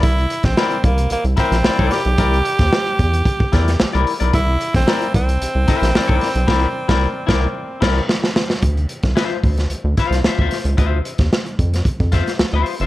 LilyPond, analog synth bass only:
\new Staff \with { instrumentName = "Analog synth bass" } { \clef bass \time 4/4 \key c \mixolydian \tempo 4 = 112 c,8 r16 bes,,16 r8 c,8 c,16 c,16 r16 bes,,16 c,16 c,16 r16 b,,16 | c,8 r16 ees,16 r8 e,8 r8 e,8 c,16 c,16 r16 b,,16 | c,8 r16 bes,,16 r8 c,8 c,16 c,16 r16 bes,,16 c,16 c,16 r16 b,,16 | c,8 r16 c,8 r16 c,8 r8 c,8 r4 |
d,8 r16 c,16 r8 d,8 d,16 d,16 r16 c,16 d,16 d,16 r16 des,16 | d,8 r16 ees,16 r8 f,8 f,16 f,8 r16 d,16 d,16 r16 fis,,16 | }